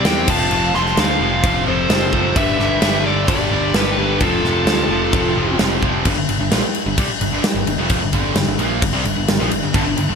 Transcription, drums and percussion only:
0.05 snare loud
0.05 crash medium
0.28 kick loud
0.28 crash loud
0.51 crash medium
0.74 snare soft
0.86 snare soft
0.97 snare loud
0.97 crash medium
1.44 kick loud
1.44 crash medium
1.90 snare loud
1.90 crash medium
2.13 kick medium
2.36 kick loud
2.36 crash medium
2.60 snare soft
2.82 snare loud
2.82 crash medium
3.28 kick loud
3.28 crash medium
3.74 snare loud
3.74 crash medium
4.20 kick loud
4.20 crash medium
4.44 snare soft
4.67 snare loud
4.67 crash medium
5.13 kick loud
5.13 crash medium
5.59 snare loud
5.59 crash medium
5.83 kick medium
6.05 kick loud
6.05 crash medium
6.29 crash medium
6.52 snare loud
6.52 crash medium
6.75 crash medium
6.98 kick loud
6.98 crash medium
7.21 crash medium
7.44 snare loud
7.44 crash medium
7.67 crash medium
7.90 kick loud
7.90 crash medium
8.13 kick medium
8.13 crash medium
8.36 snare loud
8.36 crash medium
8.59 crash medium
8.82 kick loud
8.82 crash medium
9.05 crash medium
9.28 snare loud
9.28 crash medium
9.51 crash medium
9.74 kick loud
9.74 crash medium
9.97 crash medium

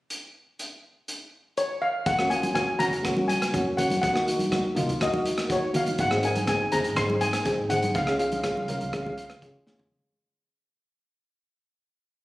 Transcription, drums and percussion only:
0.10 closed hi-hat soft
0.59 closed hi-hat medium
1.08 closed hi-hat medium
1.57 closed hi-hat soft
2.06 kick loud
2.06 closed hi-hat soft
2.19 cross-stick medium
2.31 closed hi-hat medium
2.43 closed hi-hat medium
2.43 high conga medium
2.55 kick medium
2.55 cross-stick medium
2.55 closed hi-hat medium
2.80 closed hi-hat medium
2.80 low conga medium
2.93 closed hi-hat medium
3.05 kick loud
3.05 cross-stick medium
3.05 closed hi-hat medium
3.17 high conga medium
3.29 closed hi-hat medium
3.42 cross-stick medium
3.42 closed hi-hat medium
3.54 kick medium
3.54 closed hi-hat medium
3.78 closed hi-hat medium
3.78 low conga medium
3.90 closed hi-hat medium
3.90 high conga medium
4.03 kick loud
4.03 closed hi-hat medium
4.16 cross-stick medium
4.28 closed hi-hat medium
4.39 closed hi-hat medium
4.39 high conga medium
4.52 kick medium
4.52 cross-stick medium
4.52 closed hi-hat medium
4.76 closed hi-hat medium
4.76 low conga medium
4.89 closed hi-hat medium
5.01 kick medium
5.01 cross-stick medium
5.01 closed hi-hat medium
5.14 high conga medium
5.25 closed hi-hat medium
5.38 cross-stick medium
5.38 closed hi-hat soft
5.50 kick medium
5.50 closed hi-hat medium
5.74 closed hi-hat medium
5.74 low conga medium
5.86 closed hi-hat medium
5.86 high conga medium
5.98 kick medium
5.98 closed hi-hat medium
6.11 cross-stick medium
6.23 closed hi-hat medium
6.36 closed hi-hat medium
6.36 high conga medium
6.47 kick medium
6.47 cross-stick medium
6.47 closed hi-hat medium
6.72 closed hi-hat medium
6.72 low conga medium
6.84 closed hi-hat medium
6.96 kick loud
6.96 cross-stick medium
6.96 closed hi-hat medium
7.10 high conga medium
7.21 closed hi-hat medium
7.33 cross-stick medium
7.33 closed hi-hat medium
7.45 kick medium
7.45 closed hi-hat medium
7.70 closed hi-hat medium
7.70 low conga medium
7.83 closed hi-hat medium
7.83 high conga medium
7.95 kick loud
7.95 closed hi-hat medium
8.07 cross-stick medium
8.19 closed hi-hat medium
8.32 closed hi-hat medium
8.32 high conga medium
8.44 kick medium
8.44 cross-stick medium
8.44 closed hi-hat medium
8.57 high conga medium
8.68 closed hi-hat medium
8.68 high conga medium
8.68 low conga medium
8.81 closed hi-hat medium
8.93 kick loud
8.93 cross-stick medium
8.93 closed hi-hat medium
9.06 high conga medium
9.06 low conga medium
9.18 closed hi-hat medium
9.30 cross-stick medium
9.30 closed hi-hat medium
9.42 kick medium
9.42 closed hi-hat medium
9.67 snare soft
9.67 low conga medium
9.79 floor tom medium
9.79 high conga medium

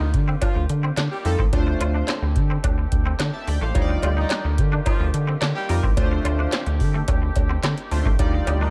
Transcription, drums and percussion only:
0.14 kick medium
0.14 closed hi-hat medium
0.42 kick loud
0.42 closed hi-hat medium
0.42 cowbell medium
0.69 closed hi-hat medium
0.97 snare loud
0.97 clap loud
0.97 closed hi-hat medium
0.97 cowbell medium
1.25 open hi-hat medium
1.39 kick loud
1.53 kick loud
1.53 closed hi-hat medium
1.53 cowbell medium
1.81 closed hi-hat medium
1.81 cowbell medium
2.08 snare loud
2.08 clap loud
2.08 closed hi-hat loud
2.08 cowbell medium
2.36 kick medium
2.36 closed hi-hat medium
2.64 kick loud
2.64 closed hi-hat loud
2.64 cowbell medium
2.92 kick medium
2.92 closed hi-hat medium
3.19 snare loud
3.19 clap loud
3.19 closed hi-hat medium
3.19 cowbell medium
3.47 open hi-hat medium
3.75 kick loud
3.75 closed hi-hat medium
3.75 cowbell medium
4.02 closed hi-hat medium
4.02 cowbell medium
4.29 snare loud
4.29 clap loud
4.29 closed hi-hat loud
4.29 cowbell medium
4.58 kick medium
4.58 closed hi-hat medium
4.86 kick loud
4.86 closed hi-hat loud
4.86 cowbell medium
5.14 closed hi-hat medium
5.42 snare loud
5.42 clap medium
5.42 closed hi-hat medium
5.42 cowbell medium
5.69 open hi-hat medium
5.83 kick loud
5.97 kick loud
5.97 closed hi-hat medium
5.97 cowbell medium
6.25 closed hi-hat medium
6.25 cowbell medium
6.52 snare loud
6.52 clap medium
6.52 closed hi-hat medium
6.52 cowbell medium
6.66 closed hi-hat medium
6.80 kick medium
6.80 open hi-hat medium
7.08 kick loud
7.08 closed hi-hat loud
7.08 cowbell medium
7.36 kick medium
7.36 closed hi-hat medium
7.36 cowbell medium
7.63 snare loud
7.63 clap medium
7.63 closed hi-hat medium
7.63 cowbell medium
7.78 closed hi-hat medium
7.91 open hi-hat medium
8.05 kick loud
8.19 kick loud
8.19 closed hi-hat medium
8.19 cowbell medium
8.47 closed hi-hat medium
8.47 cowbell medium

